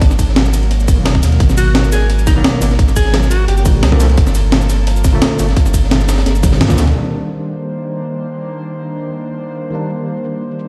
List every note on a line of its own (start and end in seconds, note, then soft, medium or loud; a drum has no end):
0.01 0.90 G#1 loud
0.01 3.45 F#3 medium
0.01 3.45 A#3 medium
0.01 3.45 A#4 medium
0.01 kick loud
0.01 closed hi-hat medium
0.01 closed hi-hat loud
0.11 snare soft
0.11 cabasa soft
0.19 kick medium
0.19 closed hi-hat medium
0.19 ride medium
0.19 cabasa medium
0.28 snare soft
0.35 0.42 B2 medium
0.35 0.42 D#3 medium
0.35 0.42 F#3 medium
0.35 0.43 A#3 medium
0.35 snare loud
0.35 closed hi-hat medium
0.46 snare medium
0.46 cabasa soft
0.53 closed hi-hat medium
0.53 ride medium
0.53 cabasa medium
0.63 closed hi-hat soft
0.71 closed hi-hat medium
0.80 snare soft
0.80 closed hi-hat soft
0.80 cabasa soft
0.88 1.22 F#1 medium
0.88 kick loud
0.88 closed hi-hat medium
0.88 ride medium
0.88 cabasa medium
0.95 1.72 B2 medium
0.95 1.73 D#3 medium
0.95 1.73 F#3 medium
1.00 1.74 A#3 medium
1.05 snare loud
1.05 closed hi-hat medium
1.05 closed hi-hat loud
1.15 kick medium
1.15 snare soft
1.23 1.39 D#2 medium
1.23 snare medium
1.23 closed hi-hat medium
1.23 open hi-hat medium
1.23 ride medium
1.23 cabasa medium
1.32 snare soft
1.32 closed hi-hat soft
1.40 2.43 G#1 loud
1.40 kick loud
1.40 closed hi-hat medium
1.50 snare medium
1.50 snare soft
1.50 cabasa soft
1.57 1.84 F#4 medium
1.57 closed hi-hat medium
1.57 ride medium
1.57 cabasa medium
1.74 1.80 B2 medium
1.74 1.81 D#3 medium
1.74 1.81 F#3 medium
1.74 1.81 A#3 medium
1.74 snare loud
1.74 closed hi-hat medium
1.84 closed hi-hat soft
1.84 cabasa soft
1.92 2.08 G#4 medium
1.92 snare medium
1.92 closed hi-hat medium
1.92 ride medium
1.92 cabasa medium
2.10 closed hi-hat medium
2.19 closed hi-hat soft
2.19 cabasa soft
2.27 2.33 D#4 medium
2.27 kick loud
2.27 snare soft
2.27 closed hi-hat medium
2.27 ride medium
2.27 cabasa medium
2.35 2.59 B2 loud
2.35 2.60 D#3 medium
2.35 2.60 F#3 medium
2.35 2.60 A#3 loud
2.35 2.41 D#4 medium
2.44 snare loud
2.44 closed hi-hat medium
2.44 closed hi-hat loud
2.60 2.77 G#1 medium
2.60 2.67 B2 medium
2.60 2.67 D#3 medium
2.60 2.68 F#3 medium
2.60 2.68 A#3 medium
2.60 closed hi-hat medium
2.60 open hi-hat medium
2.60 ride medium
2.60 cabasa medium
2.71 snare medium
2.71 closed hi-hat soft
2.79 3.47 G#1 loud
2.79 kick loud
2.79 closed hi-hat medium
2.89 snare soft
2.89 cabasa soft
2.96 3.17 G#4 medium
2.96 kick medium
2.96 closed hi-hat medium
2.96 ride medium
2.96 cabasa medium
3.05 snare soft
3.12 3.19 B2 medium
3.12 3.19 D#3 medium
3.12 3.20 F#3 medium
3.12 3.20 A#3 medium
3.12 snare loud
3.12 closed hi-hat medium
3.23 snare medium
3.23 cabasa soft
3.31 3.47 F#4 loud
3.31 closed hi-hat medium
3.31 ride medium
3.31 cabasa medium
3.48 3.82 G1 loud
3.48 6.92 F3 medium
3.48 6.92 A#3 medium
3.48 3.54 G4 medium
3.48 6.92 A4 medium
3.48 closed hi-hat medium
3.57 3.63 G4 medium
3.57 snare soft
3.57 closed hi-hat soft
3.57 cabasa soft
3.64 3.89 A#2 medium
3.64 3.90 D3 medium
3.64 3.90 F3 medium
3.64 3.91 G3 medium
3.64 kick loud
3.64 closed hi-hat medium
3.64 ride medium
3.64 cabasa medium
3.83 4.16 C2 medium
3.83 snare loud
3.83 closed hi-hat medium
3.83 closed hi-hat loud
3.91 3.98 A#2 medium
3.91 3.98 D3 medium
3.91 3.99 F3 medium
3.91 3.99 A#3 loud
3.91 kick medium
3.91 snare soft
3.99 4.06 A#2 loud
3.99 4.06 D3 medium
3.99 4.06 F3 medium
3.99 4.07 A3 loud
3.99 snare medium
3.99 closed hi-hat medium
3.99 open hi-hat medium
3.99 ride medium
3.99 cabasa medium
4.10 snare soft
4.10 closed hi-hat soft
4.17 5.20 G1 loud
4.17 kick loud
4.17 closed hi-hat loud
4.17 closed hi-hat medium
4.27 snare soft
4.27 cabasa soft
4.35 closed hi-hat medium
4.35 ride medium
4.35 cabasa medium
4.51 4.58 A#2 medium
4.51 4.58 D3 medium
4.51 4.59 F3 medium
4.51 4.59 A3 medium
4.51 snare loud
4.51 closed hi-hat loud
4.51 closed hi-hat medium
4.62 closed hi-hat soft
4.62 cabasa soft
4.69 snare medium
4.69 closed hi-hat medium
4.69 ride medium
4.69 cabasa medium
4.87 closed hi-hat loud
4.96 closed hi-hat soft
4.96 cabasa soft
5.04 kick loud
5.04 snare medium
5.04 closed hi-hat medium
5.04 ride medium
5.04 cabasa medium
5.12 5.37 A#2 loud
5.12 5.37 D3 medium
5.12 5.37 F3 medium
5.12 5.38 A3 loud
5.22 snare loud
5.22 closed hi-hat medium
5.22 closed hi-hat loud
5.38 5.55 G1 medium
5.38 5.45 A#2 medium
5.38 5.45 D3 medium
5.38 5.45 F3 medium
5.38 5.46 A3 medium
5.38 closed hi-hat medium
5.38 open hi-hat medium
5.38 ride medium
5.38 cabasa medium
5.49 snare medium
5.49 closed hi-hat soft
5.56 6.25 G1 loud
5.56 kick loud
5.56 closed hi-hat medium
5.56 closed hi-hat loud
5.66 snare soft
5.66 cabasa soft
5.74 kick medium
5.74 closed hi-hat medium
5.74 ride medium
5.74 cabasa medium
5.84 snare soft
5.90 5.97 A#2 medium
5.90 5.97 D3 medium
5.90 5.97 F3 medium
5.90 5.98 A3 medium
5.90 snare loud
5.90 closed hi-hat medium
5.90 closed hi-hat loud
6.01 snare medium
6.01 cabasa soft
6.08 snare medium
6.08 closed hi-hat medium
6.08 ride medium
6.08 cabasa medium
6.13 snare medium
6.13 closed hi-hat medium
6.18 snare loud
6.18 closed hi-hat soft
6.18 closed hi-hat medium
6.26 6.59 G1 loud
6.26 snare loud
6.26 closed hi-hat medium
6.26 closed hi-hat loud
6.35 closed hi-hat soft
6.35 cabasa soft
6.42 6.67 A#2 medium
6.42 6.67 D3 medium
6.42 6.68 F3 medium
6.42 6.68 G3 medium
6.42 kick loud
6.42 snare soft
6.42 closed hi-hat medium
6.42 high tom medium
6.42 ride medium
6.42 cabasa medium
6.52 snare loud
6.52 snare soft
6.52 closed hi-hat medium
6.61 6.76 G2 medium
6.61 snare loud
6.61 closed hi-hat loud
6.61 mid tom medium
6.69 6.75 A#2 medium
6.69 6.76 D3 medium
6.69 6.76 F3 medium
6.69 6.76 A#3 loud
6.69 kick medium
6.69 snare soft
6.69 closed hi-hat medium
6.69 mid tom medium
6.69 cabasa soft
6.77 6.94 D2 medium
6.77 6.83 A#2 loud
6.77 6.84 D3 medium
6.77 6.84 F3 medium
6.77 6.84 A3 loud
6.77 snare loud
6.77 closed hi-hat medium
6.77 open hi-hat medium
6.77 ride medium
6.77 cabasa medium
6.87 closed hi-hat soft
6.87 mid tom medium
6.93 9.69 D#3 medium
6.93 10.68 D#3 medium
6.93 9.70 G3 medium
6.93 10.68 A#3 medium
6.93 9.71 A#3 medium
6.93 10.68 D4 medium
6.93 10.68 C5 medium
6.98 9.72 D4 medium
7.05 cabasa soft
8.17 cabasa medium
8.51 cabasa medium
8.86 cabasa soft
9.13 cabasa soft
9.21 cabasa medium
9.55 cabasa medium
9.70 10.68 D#3 medium
9.70 10.68 G3 medium
9.70 10.68 A#3 medium
9.75 10.68 D4 medium
9.82 cabasa soft
9.90 cabasa medium
10.17 cabasa soft
10.25 cabasa soft
10.51 cabasa soft
10.59 cabasa medium